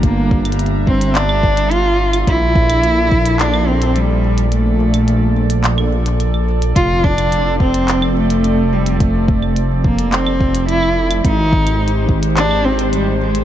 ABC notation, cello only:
X:1
M:4/4
L:1/16
Q:1/4=107
K:F
V:1 name="Cello"
B,4 z2 C2 D4 F3 z | E8 D2 C2 G,4 | A,8 z8 | F2 D4 C4 A,4 G,2 |
A,4 z2 B,2 C4 E3 z | _E6 z2 D2 C2 G,2 _A,2 |]